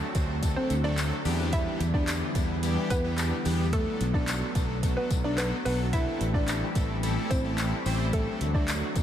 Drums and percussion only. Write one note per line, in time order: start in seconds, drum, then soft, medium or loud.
0.15 kick loud
0.15 closed hi-hat medium
0.15 tambourine medium
0.42 kick medium
0.42 closed hi-hat loud
0.42 tambourine medium
0.70 closed hi-hat medium
0.70 tambourine medium
0.98 clap loud
0.98 closed hi-hat medium
0.98 tambourine medium
1.25 open hi-hat medium
1.25 tambourine medium
1.53 kick loud
1.53 closed hi-hat medium
1.53 tambourine soft
1.80 closed hi-hat medium
1.80 tambourine soft
1.94 kick loud
2.08 clap loud
2.08 closed hi-hat loud
2.08 tambourine medium
2.35 kick loud
2.35 closed hi-hat medium
2.35 tambourine medium
2.63 closed hi-hat loud
2.63 tambourine medium
2.90 kick loud
2.90 closed hi-hat medium
2.90 tambourine medium
3.18 clap loud
3.18 closed hi-hat medium
3.18 tambourine medium
3.45 open hi-hat medium
3.45 tambourine medium
3.73 kick loud
3.73 closed hi-hat medium
4.00 closed hi-hat medium
4.00 tambourine soft
4.14 kick loud
4.28 clap loud
4.28 closed hi-hat medium
4.28 tambourine medium
4.55 kick loud
4.55 closed hi-hat medium
4.55 tambourine medium
4.83 kick medium
4.83 closed hi-hat loud
4.83 tambourine medium
5.11 kick medium
5.11 closed hi-hat medium
5.11 tambourine medium
5.38 clap loud
5.38 closed hi-hat medium
5.38 tambourine medium
5.65 open hi-hat medium
5.65 tambourine soft
5.93 kick loud
5.93 closed hi-hat medium
5.93 tambourine soft
6.21 closed hi-hat medium
6.21 tambourine soft
6.34 kick loud
6.48 clap loud
6.48 closed hi-hat loud
6.48 tambourine medium
6.75 kick loud
6.75 closed hi-hat medium
6.75 tambourine medium
7.03 closed hi-hat loud
7.03 tambourine medium
7.31 kick loud
7.31 closed hi-hat medium
7.31 tambourine medium
7.58 clap loud
7.58 closed hi-hat medium
7.58 tambourine medium
7.86 open hi-hat medium
7.86 tambourine medium
8.13 kick loud
8.13 closed hi-hat medium
8.41 closed hi-hat medium
8.41 tambourine soft
8.54 kick loud
8.68 clap loud
8.68 closed hi-hat medium
8.68 tambourine medium
8.96 kick medium
8.96 closed hi-hat medium
8.96 tambourine medium